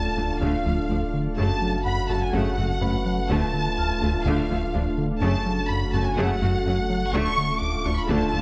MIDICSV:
0, 0, Header, 1, 12, 480
1, 0, Start_track
1, 0, Tempo, 480000
1, 1376, Time_signature, 4, 2, 24, 8
1, 8416, End_track
2, 0, Start_track
2, 0, Title_t, "Violin section"
2, 0, Program_c, 0, 48
2, 0, Note_on_c, 0, 81, 86
2, 411, Note_off_c, 0, 81, 0
2, 424, Note_on_c, 0, 77, 66
2, 1126, Note_off_c, 0, 77, 0
2, 1371, Note_on_c, 0, 81, 92
2, 1820, Note_off_c, 0, 81, 0
2, 1858, Note_on_c, 0, 83, 89
2, 2090, Note_on_c, 0, 81, 78
2, 2092, Note_off_c, 0, 83, 0
2, 2213, Note_off_c, 0, 81, 0
2, 2223, Note_on_c, 0, 80, 67
2, 2335, Note_on_c, 0, 78, 83
2, 2337, Note_off_c, 0, 80, 0
2, 3295, Note_on_c, 0, 81, 102
2, 3296, Note_off_c, 0, 78, 0
2, 4249, Note_on_c, 0, 77, 78
2, 4256, Note_off_c, 0, 81, 0
2, 4973, Note_off_c, 0, 77, 0
2, 5219, Note_on_c, 0, 81, 102
2, 5664, Note_off_c, 0, 81, 0
2, 5691, Note_on_c, 0, 83, 90
2, 5933, Note_on_c, 0, 81, 77
2, 5934, Note_off_c, 0, 83, 0
2, 6049, Note_on_c, 0, 80, 81
2, 6052, Note_off_c, 0, 81, 0
2, 6167, Note_on_c, 0, 78, 95
2, 6173, Note_off_c, 0, 80, 0
2, 7113, Note_off_c, 0, 78, 0
2, 7129, Note_on_c, 0, 85, 115
2, 7612, Note_on_c, 0, 86, 88
2, 7613, Note_off_c, 0, 85, 0
2, 7851, Note_on_c, 0, 85, 89
2, 7854, Note_off_c, 0, 86, 0
2, 7974, Note_off_c, 0, 85, 0
2, 7987, Note_on_c, 0, 83, 86
2, 8097, Note_on_c, 0, 81, 106
2, 8102, Note_off_c, 0, 83, 0
2, 8416, Note_off_c, 0, 81, 0
2, 8416, End_track
3, 0, Start_track
3, 0, Title_t, "Violin section"
3, 0, Program_c, 1, 48
3, 0, Note_on_c, 1, 81, 78
3, 400, Note_off_c, 1, 81, 0
3, 421, Note_on_c, 1, 77, 66
3, 1139, Note_off_c, 1, 77, 0
3, 1372, Note_on_c, 1, 81, 78
3, 1820, Note_off_c, 1, 81, 0
3, 1858, Note_on_c, 1, 83, 74
3, 2093, Note_off_c, 1, 83, 0
3, 2106, Note_on_c, 1, 81, 70
3, 2218, Note_on_c, 1, 80, 67
3, 2219, Note_off_c, 1, 81, 0
3, 2332, Note_on_c, 1, 78, 75
3, 2337, Note_off_c, 1, 80, 0
3, 3275, Note_off_c, 1, 78, 0
3, 3304, Note_on_c, 1, 81, 87
3, 4241, Note_off_c, 1, 81, 0
3, 4257, Note_on_c, 1, 77, 77
3, 4977, Note_off_c, 1, 77, 0
3, 5222, Note_on_c, 1, 81, 90
3, 5666, Note_off_c, 1, 81, 0
3, 5695, Note_on_c, 1, 83, 85
3, 5934, Note_on_c, 1, 81, 88
3, 5936, Note_off_c, 1, 83, 0
3, 6052, Note_on_c, 1, 80, 79
3, 6056, Note_off_c, 1, 81, 0
3, 6168, Note_on_c, 1, 78, 89
3, 6174, Note_off_c, 1, 80, 0
3, 7132, Note_off_c, 1, 78, 0
3, 7143, Note_on_c, 1, 85, 112
3, 7610, Note_off_c, 1, 85, 0
3, 7620, Note_on_c, 1, 86, 79
3, 7853, Note_off_c, 1, 86, 0
3, 7857, Note_on_c, 1, 85, 93
3, 7973, Note_on_c, 1, 83, 83
3, 7977, Note_off_c, 1, 85, 0
3, 8095, Note_off_c, 1, 83, 0
3, 8100, Note_on_c, 1, 81, 84
3, 8416, Note_off_c, 1, 81, 0
3, 8416, End_track
4, 0, Start_track
4, 0, Title_t, "Grand piano"
4, 0, Program_c, 2, 0
4, 0, Control_c, 2, 64, 127
4, 0, Note_on_c, 2, 74, 38
4, 1098, Note_off_c, 2, 74, 0
4, 1395, Control_c, 2, 64, 0
4, 1536, Control_c, 2, 64, 127
4, 1856, Note_on_c, 2, 78, 46
4, 2811, Note_on_c, 2, 71, 43
4, 2817, Note_on_c, 2, 83, 52
4, 3256, Note_off_c, 2, 78, 0
4, 3314, Control_c, 2, 64, 0
4, 3461, Control_c, 2, 64, 127
4, 3783, Note_on_c, 2, 89, 46
4, 4214, Note_off_c, 2, 71, 0
4, 4217, Note_off_c, 2, 83, 0
4, 5180, Note_off_c, 2, 89, 0
4, 5215, Note_on_c, 2, 85, 59
4, 5235, Control_c, 2, 64, 0
4, 5389, Control_c, 2, 64, 127
4, 6616, Note_off_c, 2, 85, 0
4, 7156, Control_c, 2, 64, 0
4, 7298, Control_c, 2, 64, 127
4, 8102, Note_on_c, 2, 69, 48
4, 8105, Note_on_c, 2, 81, 59
4, 8416, Note_off_c, 2, 69, 0
4, 8416, Note_off_c, 2, 81, 0
4, 8416, End_track
5, 0, Start_track
5, 0, Title_t, "Ambient pad"
5, 0, Program_c, 3, 92
5, 0, Note_on_c, 3, 57, 65
5, 0, Note_on_c, 3, 62, 72
5, 0, Note_on_c, 3, 69, 70
5, 0, Note_on_c, 3, 77, 60
5, 1374, Note_off_c, 3, 62, 0
5, 1376, Note_off_c, 3, 77, 0
5, 1377, Note_on_c, 3, 78, 74
5, 1381, Note_on_c, 3, 61, 70
5, 3250, Note_off_c, 3, 57, 0
5, 3252, Note_off_c, 3, 69, 0
5, 3297, Note_off_c, 3, 78, 0
5, 3299, Note_off_c, 3, 61, 0
5, 3312, Note_on_c, 3, 77, 69
5, 3313, Note_on_c, 3, 57, 68
5, 3314, Note_on_c, 3, 62, 67
5, 3316, Note_on_c, 3, 69, 67
5, 5224, Note_off_c, 3, 77, 0
5, 5225, Note_off_c, 3, 62, 0
5, 5231, Note_on_c, 3, 78, 72
5, 5233, Note_on_c, 3, 61, 75
5, 7137, Note_on_c, 3, 62, 76
5, 7139, Note_on_c, 3, 77, 74
5, 7144, Note_off_c, 3, 78, 0
5, 7145, Note_off_c, 3, 61, 0
5, 8416, Note_off_c, 3, 57, 0
5, 8416, Note_off_c, 3, 62, 0
5, 8416, Note_off_c, 3, 69, 0
5, 8416, Note_off_c, 3, 77, 0
5, 8416, End_track
6, 0, Start_track
6, 0, Title_t, "French horn section"
6, 0, Program_c, 4, 60
6, 0, Note_on_c, 4, 57, 58
6, 0, Note_on_c, 4, 65, 58
6, 1335, Note_off_c, 4, 57, 0
6, 1373, Note_off_c, 4, 65, 0
6, 1383, Note_on_c, 4, 57, 61
6, 1385, Note_on_c, 4, 66, 61
6, 3263, Note_off_c, 4, 66, 0
6, 3290, Note_on_c, 4, 65, 72
6, 5045, Note_off_c, 4, 57, 0
6, 5045, Note_off_c, 4, 65, 0
6, 5215, Note_on_c, 4, 57, 88
6, 5221, Note_on_c, 4, 66, 90
6, 7099, Note_off_c, 4, 66, 0
6, 7135, Note_on_c, 4, 65, 92
6, 8416, Note_off_c, 4, 57, 0
6, 8416, Note_off_c, 4, 65, 0
6, 8416, End_track
7, 0, Start_track
7, 0, Title_t, "Viola section"
7, 0, Program_c, 5, 48
7, 174, Note_on_c, 5, 57, 42
7, 174, Note_on_c, 5, 65, 51
7, 253, Note_off_c, 5, 57, 0
7, 254, Note_off_c, 5, 65, 0
7, 410, Note_on_c, 5, 57, 64
7, 411, Note_on_c, 5, 50, 61
7, 636, Note_off_c, 5, 57, 0
7, 637, Note_off_c, 5, 50, 0
7, 648, Note_on_c, 5, 57, 51
7, 648, Note_on_c, 5, 65, 42
7, 728, Note_off_c, 5, 57, 0
7, 728, Note_off_c, 5, 65, 0
7, 895, Note_on_c, 5, 62, 50
7, 897, Note_on_c, 5, 53, 50
7, 975, Note_off_c, 5, 62, 0
7, 977, Note_off_c, 5, 53, 0
7, 1371, Note_on_c, 5, 49, 70
7, 1373, Note_on_c, 5, 57, 62
7, 1597, Note_off_c, 5, 49, 0
7, 1598, Note_off_c, 5, 57, 0
7, 2090, Note_on_c, 5, 57, 46
7, 2090, Note_on_c, 5, 66, 54
7, 2170, Note_off_c, 5, 57, 0
7, 2170, Note_off_c, 5, 66, 0
7, 2333, Note_on_c, 5, 57, 74
7, 2336, Note_on_c, 5, 49, 71
7, 2558, Note_off_c, 5, 57, 0
7, 2560, Note_off_c, 5, 49, 0
7, 2569, Note_on_c, 5, 66, 52
7, 2570, Note_on_c, 5, 57, 51
7, 2649, Note_off_c, 5, 66, 0
7, 2650, Note_off_c, 5, 57, 0
7, 2820, Note_on_c, 5, 54, 49
7, 2822, Note_on_c, 5, 61, 50
7, 2900, Note_off_c, 5, 54, 0
7, 2902, Note_off_c, 5, 61, 0
7, 3298, Note_on_c, 5, 57, 73
7, 3299, Note_on_c, 5, 50, 72
7, 3521, Note_off_c, 5, 50, 0
7, 3521, Note_off_c, 5, 57, 0
7, 4023, Note_on_c, 5, 57, 62
7, 4024, Note_on_c, 5, 65, 71
7, 4103, Note_off_c, 5, 57, 0
7, 4104, Note_off_c, 5, 65, 0
7, 4264, Note_on_c, 5, 50, 81
7, 4266, Note_on_c, 5, 57, 81
7, 4484, Note_off_c, 5, 50, 0
7, 4485, Note_off_c, 5, 57, 0
7, 4497, Note_on_c, 5, 57, 67
7, 4498, Note_on_c, 5, 65, 58
7, 4577, Note_off_c, 5, 57, 0
7, 4578, Note_off_c, 5, 65, 0
7, 4737, Note_on_c, 5, 53, 67
7, 4738, Note_on_c, 5, 62, 65
7, 4817, Note_off_c, 5, 53, 0
7, 4818, Note_off_c, 5, 62, 0
7, 5218, Note_on_c, 5, 57, 73
7, 5221, Note_on_c, 5, 49, 87
7, 5441, Note_off_c, 5, 57, 0
7, 5442, Note_off_c, 5, 49, 0
7, 5938, Note_on_c, 5, 57, 64
7, 5938, Note_on_c, 5, 66, 69
7, 6018, Note_off_c, 5, 57, 0
7, 6018, Note_off_c, 5, 66, 0
7, 6172, Note_on_c, 5, 49, 89
7, 6174, Note_on_c, 5, 57, 93
7, 6397, Note_off_c, 5, 49, 0
7, 6399, Note_off_c, 5, 57, 0
7, 6417, Note_on_c, 5, 57, 55
7, 6417, Note_on_c, 5, 66, 62
7, 6497, Note_off_c, 5, 57, 0
7, 6497, Note_off_c, 5, 66, 0
7, 6661, Note_on_c, 5, 61, 66
7, 6663, Note_on_c, 5, 54, 73
7, 6741, Note_off_c, 5, 61, 0
7, 6743, Note_off_c, 5, 54, 0
7, 7136, Note_on_c, 5, 50, 82
7, 7137, Note_on_c, 5, 57, 96
7, 7359, Note_off_c, 5, 50, 0
7, 7360, Note_off_c, 5, 57, 0
7, 7849, Note_on_c, 5, 57, 64
7, 7850, Note_on_c, 5, 65, 60
7, 7929, Note_off_c, 5, 57, 0
7, 7930, Note_off_c, 5, 65, 0
7, 8083, Note_on_c, 5, 50, 80
7, 8086, Note_on_c, 5, 57, 76
7, 8311, Note_off_c, 5, 57, 0
7, 8312, Note_off_c, 5, 50, 0
7, 8323, Note_on_c, 5, 57, 58
7, 8325, Note_on_c, 5, 65, 60
7, 8403, Note_off_c, 5, 57, 0
7, 8405, Note_off_c, 5, 65, 0
7, 8416, End_track
8, 0, Start_track
8, 0, Title_t, "Synth arpeggio sound"
8, 0, Program_c, 6, 84
8, 177, Note_on_c, 6, 62, 56
8, 321, Note_off_c, 6, 62, 0
8, 416, Note_on_c, 6, 50, 78
8, 560, Note_off_c, 6, 50, 0
8, 656, Note_on_c, 6, 53, 63
8, 800, Note_off_c, 6, 53, 0
8, 897, Note_on_c, 6, 53, 62
8, 1041, Note_off_c, 6, 53, 0
8, 1379, Note_on_c, 6, 54, 92
8, 1522, Note_off_c, 6, 54, 0
8, 2096, Note_on_c, 6, 66, 59
8, 2240, Note_off_c, 6, 66, 0
8, 2333, Note_on_c, 6, 54, 82
8, 2478, Note_off_c, 6, 54, 0
8, 2575, Note_on_c, 6, 57, 65
8, 2719, Note_off_c, 6, 57, 0
8, 2810, Note_on_c, 6, 57, 67
8, 2956, Note_off_c, 6, 57, 0
8, 3295, Note_on_c, 6, 50, 90
8, 3440, Note_off_c, 6, 50, 0
8, 4014, Note_on_c, 6, 62, 61
8, 4158, Note_off_c, 6, 62, 0
8, 4259, Note_on_c, 6, 50, 80
8, 4402, Note_off_c, 6, 50, 0
8, 4504, Note_on_c, 6, 53, 61
8, 4646, Note_off_c, 6, 53, 0
8, 4745, Note_on_c, 6, 53, 62
8, 4887, Note_off_c, 6, 53, 0
8, 5228, Note_on_c, 6, 54, 90
8, 5368, Note_off_c, 6, 54, 0
8, 5946, Note_on_c, 6, 66, 65
8, 6087, Note_off_c, 6, 66, 0
8, 6182, Note_on_c, 6, 54, 81
8, 6325, Note_off_c, 6, 54, 0
8, 6419, Note_on_c, 6, 57, 71
8, 6562, Note_off_c, 6, 57, 0
8, 6661, Note_on_c, 6, 57, 62
8, 6804, Note_off_c, 6, 57, 0
8, 7135, Note_on_c, 6, 50, 99
8, 7279, Note_off_c, 6, 50, 0
8, 7856, Note_on_c, 6, 62, 72
8, 8000, Note_off_c, 6, 62, 0
8, 8094, Note_on_c, 6, 50, 74
8, 8239, Note_off_c, 6, 50, 0
8, 8338, Note_on_c, 6, 53, 62
8, 8416, Note_off_c, 6, 53, 0
8, 8416, End_track
9, 0, Start_track
9, 0, Title_t, "Analog synth bass"
9, 0, Program_c, 7, 38
9, 175, Note_on_c, 7, 38, 64
9, 320, Note_off_c, 7, 38, 0
9, 416, Note_on_c, 7, 38, 86
9, 560, Note_off_c, 7, 38, 0
9, 659, Note_on_c, 7, 38, 58
9, 802, Note_off_c, 7, 38, 0
9, 895, Note_on_c, 7, 38, 52
9, 1039, Note_off_c, 7, 38, 0
9, 1137, Note_on_c, 7, 50, 60
9, 1281, Note_off_c, 7, 50, 0
9, 1378, Note_on_c, 7, 42, 84
9, 1521, Note_off_c, 7, 42, 0
9, 1619, Note_on_c, 7, 54, 55
9, 1762, Note_off_c, 7, 54, 0
9, 1860, Note_on_c, 7, 42, 50
9, 2003, Note_off_c, 7, 42, 0
9, 2095, Note_on_c, 7, 42, 65
9, 2239, Note_off_c, 7, 42, 0
9, 2334, Note_on_c, 7, 42, 84
9, 2479, Note_off_c, 7, 42, 0
9, 2579, Note_on_c, 7, 42, 58
9, 2722, Note_off_c, 7, 42, 0
9, 2818, Note_on_c, 7, 42, 62
9, 2961, Note_off_c, 7, 42, 0
9, 3056, Note_on_c, 7, 54, 57
9, 3201, Note_off_c, 7, 54, 0
9, 3297, Note_on_c, 7, 38, 96
9, 3441, Note_off_c, 7, 38, 0
9, 3538, Note_on_c, 7, 50, 51
9, 3682, Note_off_c, 7, 50, 0
9, 3784, Note_on_c, 7, 38, 62
9, 3926, Note_off_c, 7, 38, 0
9, 4024, Note_on_c, 7, 38, 65
9, 4166, Note_off_c, 7, 38, 0
9, 4266, Note_on_c, 7, 38, 80
9, 4407, Note_off_c, 7, 38, 0
9, 4499, Note_on_c, 7, 38, 64
9, 4642, Note_off_c, 7, 38, 0
9, 4742, Note_on_c, 7, 38, 60
9, 4884, Note_off_c, 7, 38, 0
9, 4978, Note_on_c, 7, 50, 62
9, 5122, Note_off_c, 7, 50, 0
9, 5216, Note_on_c, 7, 42, 99
9, 5360, Note_off_c, 7, 42, 0
9, 5460, Note_on_c, 7, 54, 62
9, 5603, Note_off_c, 7, 54, 0
9, 5700, Note_on_c, 7, 42, 58
9, 5843, Note_off_c, 7, 42, 0
9, 5941, Note_on_c, 7, 42, 65
9, 6084, Note_off_c, 7, 42, 0
9, 6183, Note_on_c, 7, 42, 92
9, 6325, Note_off_c, 7, 42, 0
9, 6419, Note_on_c, 7, 42, 62
9, 6562, Note_off_c, 7, 42, 0
9, 6656, Note_on_c, 7, 42, 69
9, 6800, Note_off_c, 7, 42, 0
9, 6897, Note_on_c, 7, 54, 70
9, 7041, Note_off_c, 7, 54, 0
9, 7136, Note_on_c, 7, 38, 96
9, 7280, Note_off_c, 7, 38, 0
9, 7375, Note_on_c, 7, 50, 62
9, 7520, Note_off_c, 7, 50, 0
9, 7613, Note_on_c, 7, 38, 58
9, 7758, Note_off_c, 7, 38, 0
9, 7854, Note_on_c, 7, 38, 72
9, 7999, Note_off_c, 7, 38, 0
9, 8094, Note_on_c, 7, 38, 97
9, 8238, Note_off_c, 7, 38, 0
9, 8332, Note_on_c, 7, 38, 64
9, 8416, Note_off_c, 7, 38, 0
9, 8416, End_track
10, 0, Start_track
10, 0, Title_t, "Cello section"
10, 0, Program_c, 8, 48
10, 175, Note_on_c, 8, 38, 47
10, 255, Note_off_c, 8, 38, 0
10, 405, Note_on_c, 8, 38, 68
10, 485, Note_off_c, 8, 38, 0
10, 648, Note_on_c, 8, 38, 52
10, 728, Note_off_c, 8, 38, 0
10, 887, Note_on_c, 8, 38, 45
10, 967, Note_off_c, 8, 38, 0
10, 1369, Note_on_c, 8, 42, 74
10, 1449, Note_off_c, 8, 42, 0
10, 2094, Note_on_c, 8, 42, 56
10, 2174, Note_off_c, 8, 42, 0
10, 2336, Note_on_c, 8, 42, 79
10, 2416, Note_off_c, 8, 42, 0
10, 2582, Note_on_c, 8, 42, 59
10, 2662, Note_off_c, 8, 42, 0
10, 2816, Note_on_c, 8, 42, 52
10, 2896, Note_off_c, 8, 42, 0
10, 3297, Note_on_c, 8, 38, 79
10, 3377, Note_off_c, 8, 38, 0
10, 4016, Note_on_c, 8, 38, 61
10, 4096, Note_off_c, 8, 38, 0
10, 4250, Note_on_c, 8, 38, 79
10, 4330, Note_off_c, 8, 38, 0
10, 4496, Note_on_c, 8, 38, 60
10, 4576, Note_off_c, 8, 38, 0
10, 4737, Note_on_c, 8, 38, 62
10, 4817, Note_off_c, 8, 38, 0
10, 5216, Note_on_c, 8, 42, 88
10, 5296, Note_off_c, 8, 42, 0
10, 5934, Note_on_c, 8, 42, 68
10, 6014, Note_off_c, 8, 42, 0
10, 6180, Note_on_c, 8, 42, 92
10, 6260, Note_off_c, 8, 42, 0
10, 6420, Note_on_c, 8, 42, 63
10, 6500, Note_off_c, 8, 42, 0
10, 6657, Note_on_c, 8, 42, 64
10, 6737, Note_off_c, 8, 42, 0
10, 7133, Note_on_c, 8, 38, 87
10, 7213, Note_off_c, 8, 38, 0
10, 7860, Note_on_c, 8, 38, 66
10, 7940, Note_off_c, 8, 38, 0
10, 8097, Note_on_c, 8, 38, 90
10, 8177, Note_off_c, 8, 38, 0
10, 8342, Note_on_c, 8, 38, 65
10, 8416, Note_off_c, 8, 38, 0
10, 8416, End_track
11, 0, Start_track
11, 0, Title_t, "Double bass section"
11, 0, Program_c, 10, 48
11, 180, Note_on_c, 10, 38, 47
11, 260, Note_off_c, 10, 38, 0
11, 419, Note_on_c, 10, 38, 70
11, 499, Note_off_c, 10, 38, 0
11, 658, Note_on_c, 10, 38, 49
11, 737, Note_off_c, 10, 38, 0
11, 897, Note_on_c, 10, 38, 50
11, 977, Note_off_c, 10, 38, 0
11, 1378, Note_on_c, 10, 30, 67
11, 1458, Note_off_c, 10, 30, 0
11, 2099, Note_on_c, 10, 30, 55
11, 2179, Note_off_c, 10, 30, 0
11, 2334, Note_on_c, 10, 30, 72
11, 2414, Note_off_c, 10, 30, 0
11, 2584, Note_on_c, 10, 30, 54
11, 2664, Note_off_c, 10, 30, 0
11, 2819, Note_on_c, 10, 30, 54
11, 2899, Note_off_c, 10, 30, 0
11, 3297, Note_on_c, 10, 38, 69
11, 3377, Note_off_c, 10, 38, 0
11, 4025, Note_on_c, 10, 38, 53
11, 4105, Note_off_c, 10, 38, 0
11, 4261, Note_on_c, 10, 38, 83
11, 4341, Note_off_c, 10, 38, 0
11, 4503, Note_on_c, 10, 38, 61
11, 4583, Note_off_c, 10, 38, 0
11, 4743, Note_on_c, 10, 38, 61
11, 4823, Note_off_c, 10, 38, 0
11, 5221, Note_on_c, 10, 30, 81
11, 5301, Note_off_c, 10, 30, 0
11, 5940, Note_on_c, 10, 30, 61
11, 6020, Note_off_c, 10, 30, 0
11, 6176, Note_on_c, 10, 30, 83
11, 6256, Note_off_c, 10, 30, 0
11, 6417, Note_on_c, 10, 30, 63
11, 6497, Note_off_c, 10, 30, 0
11, 6663, Note_on_c, 10, 30, 64
11, 6743, Note_off_c, 10, 30, 0
11, 7136, Note_on_c, 10, 38, 89
11, 7216, Note_off_c, 10, 38, 0
11, 7856, Note_on_c, 10, 38, 61
11, 7936, Note_off_c, 10, 38, 0
11, 8097, Note_on_c, 10, 38, 89
11, 8177, Note_off_c, 10, 38, 0
11, 8338, Note_on_c, 10, 38, 58
11, 8416, Note_off_c, 10, 38, 0
11, 8416, End_track
12, 0, Start_track
12, 0, Title_t, "Sub bass"
12, 0, Program_c, 11, 38
12, 0, Note_on_c, 11, 26, 63
12, 1377, Note_on_c, 11, 30, 68
12, 1392, Note_off_c, 11, 26, 0
12, 3303, Note_on_c, 11, 26, 75
12, 3318, Note_off_c, 11, 30, 0
12, 5222, Note_on_c, 11, 30, 74
12, 5237, Note_off_c, 11, 26, 0
12, 7138, Note_on_c, 11, 26, 77
12, 7153, Note_off_c, 11, 30, 0
12, 8416, Note_off_c, 11, 26, 0
12, 8416, End_track
0, 0, End_of_file